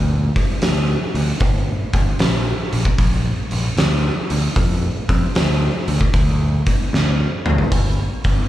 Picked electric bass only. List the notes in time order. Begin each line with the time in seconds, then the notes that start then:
Already playing: D2
0.62 D2
1.15 D2
1.40 G1
1.94 G1
2.20 A#1
2.73 A#1
2.98 A#1
3.52 A#1
3.77 D2
4.30 D2
4.56 F2
5.09 F2
5.36 D2
5.88 D2
6.14 D2
6.93 D2
7.46 D2
7.72 G1
8.25 G1